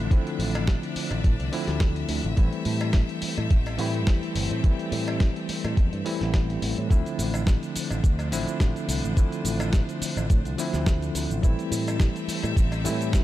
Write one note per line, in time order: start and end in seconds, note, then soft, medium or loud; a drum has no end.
0.00 2.34 F3 medium
0.00 2.34 D4 medium
0.00 9.13 E5 medium
0.10 1.49 D3 medium
0.10 1.49 F3 medium
0.10 1.50 A3 medium
0.10 1.50 C4 medium
0.10 1.50 E4 loud
0.10 2.36 D5 medium
0.10 kick loud
0.10 closed hi-hat medium
0.27 closed hi-hat soft
0.39 0.76 A1 medium
0.39 open hi-hat loud
0.55 closed hi-hat soft
0.55 cowbell medium
0.67 kick loud
0.67 snare loud
0.67 closed hi-hat medium
0.83 closed hi-hat soft
0.96 muted picked electric bass stroke soft
0.96 open hi-hat loud
1.11 1.20 A1 medium
1.11 cowbell medium
1.24 1.35 A2 medium
1.24 kick loud
1.24 closed hi-hat medium
1.39 1.49 C2 medium
1.39 closed hi-hat soft
1.52 2.34 D3 loud
1.52 2.34 F3 medium
1.52 2.35 A3 medium
1.52 2.35 C4 medium
1.52 2.35 E4 loud
1.52 open hi-hat loud
1.68 2.03 D2 medium
1.68 snare soft
1.68 closed hi-hat soft
1.80 kick loud
1.80 snare loud
1.80 closed hi-hat medium
1.96 closed hi-hat soft
2.09 2.20 D2 medium
2.09 open hi-hat loud
2.24 2.34 A1 medium
2.24 closed hi-hat soft
2.36 2.48 A1 medium
2.36 3.76 E3 medium
2.36 3.76 G3 medium
2.36 3.76 A3 medium
2.36 6.86 C4 medium
2.36 3.76 C4 medium
2.36 3.77 E4 loud
2.36 6.86 G4 medium
2.36 6.86 A4 medium
2.36 kick loud
2.36 closed hi-hat medium
2.53 closed hi-hat soft
2.65 3.02 A2 medium
2.65 open hi-hat loud
2.81 closed hi-hat soft
2.81 cowbell medium
2.93 kick loud
2.93 snare loud
2.93 closed hi-hat medium
3.09 closed hi-hat soft
3.22 muted picked electric bass stroke soft
3.22 open hi-hat loud
3.38 3.47 A2 medium
3.38 closed hi-hat soft
3.38 cowbell medium
3.50 3.79 A1 medium
3.50 kick loud
3.50 closed hi-hat medium
3.66 closed hi-hat soft
3.66 cowbell medium
3.78 4.07 A2 medium
3.78 4.60 E3 medium
3.78 4.61 G3 medium
3.78 4.61 A3 medium
3.78 4.61 C4 medium
3.78 4.62 E4 loud
3.78 open hi-hat loud
3.94 closed hi-hat soft
4.07 4.18 E2 medium
4.07 kick loud
4.07 snare loud
4.07 closed hi-hat medium
4.23 closed hi-hat soft
4.35 4.46 G1 medium
4.35 open hi-hat loud
4.51 4.60 A2 medium
4.51 closed hi-hat soft
4.63 6.02 E3 medium
4.63 6.02 G3 medium
4.63 6.03 A3 medium
4.63 6.03 C4 medium
4.63 6.03 E4 medium
4.63 kick loud
4.63 closed hi-hat medium
4.79 closed hi-hat soft
4.92 5.28 A2 medium
4.92 open hi-hat loud
5.08 closed hi-hat soft
5.08 cowbell medium
5.20 kick loud
5.20 snare loud
5.20 closed hi-hat medium
5.36 closed hi-hat soft
5.49 muted picked electric bass stroke soft
5.49 open hi-hat loud
5.65 5.73 A2 medium
5.65 closed hi-hat soft
5.65 cowbell medium
5.77 5.88 E2 medium
5.77 kick loud
5.77 closed hi-hat medium
5.93 6.02 G2 medium
5.93 closed hi-hat soft
6.04 6.87 E3 medium
6.04 6.87 G3 medium
6.04 6.87 A3 medium
6.04 6.88 C4 medium
6.04 6.88 E4 loud
6.04 open hi-hat loud
6.21 6.56 A1 medium
6.21 snare soft
6.21 closed hi-hat soft
6.34 kick loud
6.34 snare loud
6.34 closed hi-hat medium
6.50 closed hi-hat soft
6.62 6.73 A1 medium
6.62 open hi-hat loud
6.78 6.87 A2 medium
6.78 closed hi-hat soft
6.89 7.01 D2 medium
6.89 8.28 D3 medium
6.89 8.29 F3 medium
6.89 11.40 F3 medium
6.89 8.29 A3 medium
6.89 8.29 C4 medium
6.89 11.40 D4 medium
6.89 8.30 E4 loud
6.89 11.40 C5 medium
6.89 kick loud
6.89 closed hi-hat medium
6.89 shaker soft
7.06 closed hi-hat soft
7.06 shaker soft
7.19 7.55 A1 loud
7.19 open hi-hat loud
7.19 shaker medium
7.34 closed hi-hat soft
7.34 cowbell medium
7.34 shaker soft
7.47 kick loud
7.47 snare loud
7.47 closed hi-hat medium
7.47 shaker soft
7.63 closed hi-hat soft
7.63 shaker soft
7.76 muted picked electric bass stroke soft
7.76 open hi-hat loud
7.76 shaker medium
7.91 8.00 A1 medium
7.91 closed hi-hat soft
7.91 cowbell medium
7.91 shaker soft
8.04 8.32 D2 medium
8.04 kick loud
8.04 closed hi-hat medium
8.04 shaker soft
8.19 closed hi-hat soft
8.19 cowbell medium
8.19 shaker soft
8.31 8.47 A1 medium
8.31 9.13 D3 medium
8.31 9.14 F3 medium
8.31 9.14 A3 medium
8.31 9.14 C4 medium
8.31 9.14 E4 loud
8.31 open hi-hat loud
8.31 shaker medium
8.48 muted picked electric bass stroke soft
8.48 closed hi-hat soft
8.48 shaker soft
8.60 8.71 A1 medium
8.60 kick loud
8.60 snare loud
8.60 closed hi-hat medium
8.60 shaker soft
8.76 closed hi-hat soft
8.76 shaker soft
8.88 8.99 C2 medium
8.88 open hi-hat loud
8.88 shaker medium
9.04 9.13 A1 medium
9.04 closed hi-hat soft
9.04 shaker soft
9.16 10.55 D3 medium
9.16 10.55 F3 medium
9.16 10.55 A3 medium
9.16 10.56 C4 medium
9.16 10.56 E4 loud
9.16 kick loud
9.16 closed hi-hat medium
9.16 shaker soft
9.32 closed hi-hat soft
9.32 shaker soft
9.45 9.81 A1 medium
9.45 open hi-hat loud
9.45 shaker medium
9.60 closed hi-hat soft
9.60 cowbell medium
9.60 shaker soft
9.73 kick loud
9.73 snare loud
9.73 closed hi-hat medium
9.73 shaker soft
9.89 closed hi-hat soft
9.89 shaker soft
10.02 muted picked electric bass stroke soft
10.02 open hi-hat loud
10.02 shaker medium
10.17 10.26 A1 medium
10.17 closed hi-hat soft
10.17 cowbell medium
10.17 shaker soft
10.30 10.41 A2 medium
10.30 kick loud
10.30 closed hi-hat medium
10.30 shaker soft
10.45 10.54 C2 medium
10.45 closed hi-hat soft
10.45 shaker soft
10.58 11.40 D3 medium
10.58 11.40 F3 medium
10.58 11.40 A3 medium
10.58 11.41 C4 medium
10.58 11.41 E4 loud
10.58 open hi-hat medium
10.58 shaker medium
10.73 11.09 D2 medium
10.73 snare soft
10.73 closed hi-hat soft
10.73 shaker soft
10.86 kick loud
10.86 snare loud
10.86 closed hi-hat medium
10.86 shaker soft
11.02 closed hi-hat soft
11.02 shaker soft
11.15 11.26 D2 medium
11.15 open hi-hat loud
11.15 shaker medium
11.30 11.39 A1 medium
11.30 closed hi-hat soft
11.30 shaker soft
11.42 11.54 A1 loud
11.42 12.81 E3 medium
11.42 12.81 G3 medium
11.42 12.82 A3 medium
11.42 13.24 C4 medium
11.42 12.82 C4 medium
11.42 12.82 E4 loud
11.42 13.24 G4 medium
11.42 13.24 A4 medium
11.42 13.24 E5 medium
11.42 kick loud
11.42 closed hi-hat medium
11.42 shaker soft
11.59 closed hi-hat soft
11.59 shaker soft
11.71 12.08 A2 medium
11.71 open hi-hat loud
11.71 shaker medium
11.87 closed hi-hat soft
11.87 cowbell medium
11.87 shaker soft
12.00 kick loud
12.00 snare loud
12.00 closed hi-hat medium
12.00 shaker soft
12.16 closed hi-hat soft
12.16 shaker soft
12.28 muted picked electric bass stroke soft
12.28 open hi-hat loud
12.28 shaker medium
12.43 12.53 A2 medium
12.43 closed hi-hat soft
12.43 cowbell medium
12.43 shaker soft
12.56 12.86 A1 medium
12.56 kick loud
12.56 closed hi-hat medium
12.56 shaker soft
12.72 closed hi-hat soft
12.72 cowbell medium
12.72 shaker soft
12.84 13.15 A2 medium
12.84 13.24 E3 loud
12.84 13.24 G3 medium
12.84 13.24 A3 medium
12.84 13.24 C4 medium
12.84 13.24 E4 loud
12.84 open hi-hat medium
12.84 shaker medium
13.01 closed hi-hat soft
13.01 shaker soft
13.13 13.24 E2 medium
13.13 kick medium
13.13 snare loud
13.13 closed hi-hat medium
13.13 shaker soft